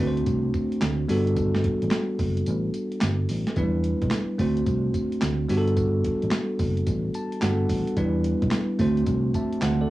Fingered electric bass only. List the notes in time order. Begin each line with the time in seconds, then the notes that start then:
0.00 D2
0.27 C2
0.82 D2
1.09 G1
1.83 A1
2.19 F#1
2.47 A1
3.03 G1
3.30 A1
3.57 E2
4.02 B1
4.40 D2
4.67 C2
5.23 D2
5.50 G1
6.23 A1
6.60 F#1
6.87 A1
7.42 G1
7.70 A1
7.97 E2
8.43 B1
8.80 D2
9.07 C2
9.62 D2